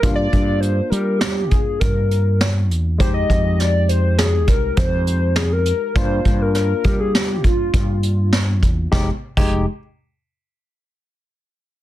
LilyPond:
<<
  \new Staff \with { instrumentName = "Analog synth lead" } { \time 5/4 \key f \dorian \tempo 4 = 101 r16 d''8. c''8 bes'8 g'8 aes'8 bes'4 r4 | c''16 ees''8. d''8 c''8 aes'8 bes'8 c''4 aes'16 bes'8. | c''8. bes'16 bes'8. aes'16 g'8 f'4. r4 | r1 r4 | }
  \new Staff \with { instrumentName = "Tine electric piano" } { \time 5/4 \key f \dorian <bes d' f'>1~ <bes d' f'>4 | <aes ees' g'>1~ <aes ees' g'>4 | <bes d' f'>1~ <bes d' f'>4 | <aes ees' g'>16 r8 <aes ees' g'>8 r2. r8. | }
  \new Staff \with { instrumentName = "Fretless electric bass" } { \clef bass \time 5/4 \key f \dorian g,8 g,4 g4 g,8 g,4. e,8 | f,8 f,2 c,8 f,2 | g,8 g,4 g4 g,8 g,4. e,8 | f,,16 r8 f,,8 r2. r8. | }
  \new DrumStaff \with { instrumentName = "Drums" } \drummode { \time 5/4 <hh bd>8 <hh bd>8 hh8 hh8 <hh sn>8 <hh bd>8 <hh bd>8 hh8 <hh sn>8 hh8 | <hh bd>8 <hh bd>8 <hh sn>8 hh8 <hh sn>8 <hh bd sn>8 <hh bd>8 hh8 <hh sn>8 hh8 | <hh bd>8 <hh bd>8 <hh sn>8 <hh bd>8 <hh sn>8 <hh bd>8 <hh bd>8 hh8 <hh sn>8 <hh bd>8 | <bd sn>8. <cymc bd>16 r4 r4 r4 r4 | }
>>